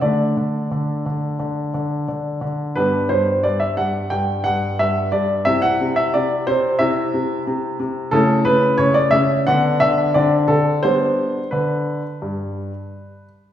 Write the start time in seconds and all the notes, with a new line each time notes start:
0.01 D3 A3 D4 D5
0.37 D3
0.71 D3
1.06 D3
1.39 D3
1.74 D3
2.08 D3
2.41 D3
2.75 G2 B3 D4 B4
3.09 G2 C5
3.43 G2 D5
3.60 E5
3.77 G2 F#5
4.10 G2 G5
4.44 G2 F#5
4.79 G2 E5
5.12 G2 D5
5.45 C3 C4 E4 E5
5.62 F#5
5.81 C3
5.96 E5
6.14 C3 D5
6.47 C3 C5
6.79 C3 C4 E4 E5
7.14 C3
7.47 C3
7.80 C3
8.11 C#3 A3 E4 A4
8.45 C#3 B4
8.78 C#3 C#5
8.94 D5
9.11 C#3 E5
9.47 D3 B3 D4 F#5
9.80 D3 E5
10.14 D3 C4 D4 D5
10.48 D3 A4
10.83 G3 B3 D4 C5
11.51 D3 B4
12.22 G2